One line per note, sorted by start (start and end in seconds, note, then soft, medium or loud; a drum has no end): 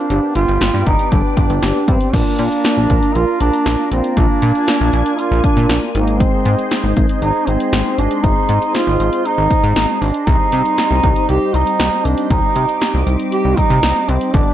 0.00 0.35 D4 loud
0.10 0.20 G1 loud
0.10 2.10 B3 medium
0.10 2.10 D4 medium
0.10 2.10 G4 medium
0.10 2.12 B4 medium
0.10 2.12 D5 medium
0.10 2.12 G5 medium
0.10 2.12 D6 medium
0.10 closed hi-hat medium
0.35 0.45 G1 loud
0.35 0.83 F4 loud
0.35 closed hi-hat medium
0.48 0.58 G1 loud
0.48 closed hi-hat soft
0.61 0.71 G1 loud
0.61 snare loud
0.61 closed hi-hat medium
0.74 0.84 G2 medium
0.86 0.96 G1 loud
0.86 1.13 D#4 medium
0.86 kick medium
0.86 closed hi-hat medium
0.99 closed hi-hat medium
1.12 1.22 G1 loud
1.12 1.37 D4 medium
1.12 kick medium
1.12 closed hi-hat medium
1.37 1.47 G1 loud
1.37 1.85 D4 medium
1.37 kick medium
1.37 closed hi-hat medium
1.50 1.60 G1 loud
1.50 closed hi-hat medium
1.63 1.73 G1 loud
1.63 snare loud
1.63 closed hi-hat medium
1.88 1.98 G2 loud
1.88 2.15 C4 medium
1.88 kick medium
1.88 closed hi-hat medium
2.01 closed hi-hat medium
2.14 2.23 A#1 loud
2.14 5.91 A#3 medium
2.14 5.91 D4 medium
2.14 3.17 D4 loud
2.14 5.91 F4 medium
2.14 5.91 A#4 medium
2.14 5.91 D5 medium
2.14 4.15 A#5 medium
2.14 kick loud
2.14 closed hi-hat medium
2.14 crash medium
2.39 2.49 A#2 loud
2.39 closed hi-hat medium
2.52 closed hi-hat soft
2.64 snare loud
2.64 closed hi-hat medium
2.77 2.87 A#1 medium
2.90 3.00 A#1 medium
2.90 kick medium
2.90 closed hi-hat medium
3.03 closed hi-hat medium
3.15 3.25 A#1 loud
3.15 3.40 F4 loud
3.15 closed hi-hat medium
3.40 3.51 A#1 loud
3.40 3.88 D4 loud
3.40 closed hi-hat medium
3.53 closed hi-hat medium
3.66 3.76 A#1 loud
3.66 snare loud
3.66 closed hi-hat medium
3.92 4.01 A#1 medium
3.92 4.19 C4 medium
3.92 closed hi-hat medium
4.04 closed hi-hat medium
4.17 4.27 A#1 loud
4.17 5.20 D4 loud
4.17 5.93 G#5 medium
4.17 kick loud
4.17 closed hi-hat medium
4.42 4.52 A#2 loud
4.42 closed hi-hat medium
4.55 closed hi-hat soft
4.68 snare loud
4.68 closed hi-hat medium
4.81 4.90 A#1 loud
4.93 5.03 A#1 loud
4.93 closed hi-hat medium
5.06 closed hi-hat medium
5.19 5.43 F4 loud
5.19 closed hi-hat medium
5.31 5.41 A#1 loud
5.44 5.81 D4 loud
5.44 kick medium
5.44 closed hi-hat medium
5.57 5.67 A#2 loud
5.57 closed hi-hat medium
5.69 5.79 A#1 loud
5.69 snare loud
5.69 closed hi-hat medium
5.95 6.24 G#1 loud
5.95 9.98 G#3 medium
5.95 6.22 A#3 medium
5.95 9.98 C4 medium
5.95 9.98 D#4 medium
5.95 10.23 G#4 medium
5.95 14.30 C5 medium
5.95 14.30 D#5 medium
5.95 12.27 C6 medium
5.95 closed hi-hat medium
6.07 closed hi-hat medium
6.20 6.95 C4 medium
6.20 kick loud
6.20 closed hi-hat medium
6.46 6.56 G#2 loud
6.46 closed hi-hat medium
6.59 closed hi-hat soft
6.71 snare loud
6.71 closed hi-hat medium
6.84 6.94 G#1 medium
6.97 7.07 G#1 medium
6.97 kick loud
6.97 closed hi-hat medium
7.09 closed hi-hat medium
7.22 7.32 G#1 loud
7.22 7.49 D#4 medium
7.22 closed hi-hat medium
7.47 7.57 G#1 loud
7.47 8.00 C4 medium
7.47 closed hi-hat medium
7.60 closed hi-hat medium
7.73 7.83 G#1 loud
7.73 snare loud
7.73 closed hi-hat medium
7.98 8.08 G#1 medium
7.98 8.25 D4 medium
7.98 closed hi-hat medium
8.11 closed hi-hat medium
8.24 8.34 G#1 loud
8.24 8.74 D#4 loud
8.24 kick loud
8.24 closed hi-hat medium
8.49 8.59 G#2 loud
8.49 closed hi-hat medium
8.62 closed hi-hat soft
8.75 9.27 F4 loud
8.75 snare loud
8.75 closed hi-hat medium
8.87 8.97 G#1 loud
9.00 9.10 G#1 loud
9.00 closed hi-hat medium
9.13 closed hi-hat medium
9.25 10.03 D#4 loud
9.25 closed hi-hat medium
9.38 9.48 G#1 loud
9.51 kick medium
9.51 closed hi-hat medium
9.64 9.73 G#2 loud
9.64 closed hi-hat medium
9.76 9.86 G#1 loud
9.76 snare loud
9.76 closed hi-hat medium
10.02 10.12 G#1 medium
10.02 10.29 D4 medium
10.02 open hi-hat medium
10.14 closed hi-hat medium
10.27 10.37 C2 loud
10.27 14.30 G3 medium
10.27 14.30 C4 medium
10.27 14.30 D#4 medium
10.27 11.28 D#4 loud
10.27 14.30 G4 medium
10.27 kick loud
10.27 closed hi-hat medium
10.52 10.62 C3 loud
10.52 closed hi-hat medium
10.65 closed hi-hat soft
10.78 snare loud
10.78 closed hi-hat medium
10.91 11.01 C2 loud
11.03 11.13 C2 loud
11.03 kick medium
11.03 closed hi-hat medium
11.16 closed hi-hat medium
11.29 11.39 C2 loud
11.29 11.56 G4 loud
11.29 closed hi-hat medium
11.54 11.64 C2 medium
11.54 12.07 D#4 loud
11.54 closed hi-hat medium
11.67 closed hi-hat medium
11.80 11.89 C2 loud
11.80 snare loud
11.80 closed hi-hat medium
12.05 12.15 C2 medium
12.05 12.30 D4 medium
12.05 closed hi-hat medium
12.18 closed hi-hat medium
12.30 12.40 C2 loud
12.30 13.01 D#4 loud
12.30 14.32 D6 medium
12.30 kick loud
12.30 closed hi-hat medium
12.56 12.66 C3 loud
12.56 closed hi-hat medium
12.69 closed hi-hat soft
12.81 snare loud
12.81 closed hi-hat medium
12.94 13.04 C2 loud
13.07 13.17 C2 loud
13.07 closed hi-hat medium
13.20 closed hi-hat medium
13.32 13.59 G4 loud
13.32 closed hi-hat medium
13.45 13.55 C2 loud
13.57 14.10 D#4 loud
13.57 kick medium
13.57 closed hi-hat medium
13.70 13.80 C3 loud
13.70 closed hi-hat medium
13.83 13.93 C2 loud
13.83 snare loud
13.83 closed hi-hat medium
14.08 14.18 C2 loud
14.08 14.35 C4 medium
14.08 closed hi-hat medium
14.21 closed hi-hat medium
14.34 14.44 G1 loud
14.34 14.54 G3 medium
14.34 14.54 B3 medium
14.34 14.54 D4 medium
14.34 14.54 D4 loud
14.34 14.54 G4 medium
14.34 14.54 B4 medium
14.34 14.54 D5 medium
14.34 14.54 B5 medium
14.34 kick loud
14.34 closed hi-hat medium